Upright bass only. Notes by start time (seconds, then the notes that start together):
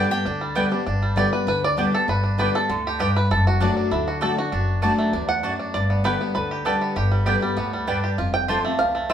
0.25 D2
0.87 G1
1.48 D2
2.08 G1
2.69 D2
3.30 F#1
3.92 D2
4.52 F#1
5.13 D2
5.74 G1
6.36 D2
6.96 G1
7.57 D2
8.18 F1
8.79 C2